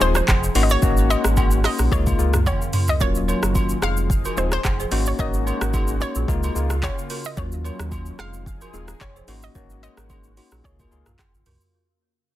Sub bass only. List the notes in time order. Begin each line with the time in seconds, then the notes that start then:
0.01 D#1
0.28 F1
0.55 G#1
0.82 G#1
1.25 G#1
1.79 A#1
1.92 C#2
2.19 C#2
3.01 D#1
3.43 F#1
3.82 F1
4.37 D#1
4.65 F1
4.92 G#1
5.19 G#1
5.61 G#1
6.16 A#1
6.28 C#2
6.55 C#2
7.37 D#2
7.79 D#2
8.19 F1
8.73 D#1
9.01 F1
9.28 G#1
9.55 G#1
9.97 G#1
10.52 A#1
10.64 C#2
10.92 C#2
11.07 A#1
11.34 G#1
11.46 C2